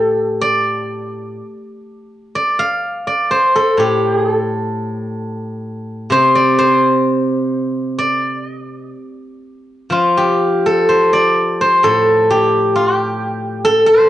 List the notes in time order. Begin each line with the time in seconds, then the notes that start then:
Already playing: A2 G4 A4
0.41 D5
2.35 D5
2.59 F5
3.07 D5
3.31 C5
3.56 A4
3.77 A2 G4
4.13 G#4
4.34 A4
6.10 C3 C5
6.35 D5
6.59 C5
7.99 D5
8.48 D#5
8.62 D5
8.77 D#5
8.89 D5
9.90 F3 F4
10.17 G4
10.66 A4
10.89 C5
11.13 D5
11.61 C5
11.83 A2 A4
12.31 G4
12.76 F4
12.95 G4
13.65 A4
13.86 C5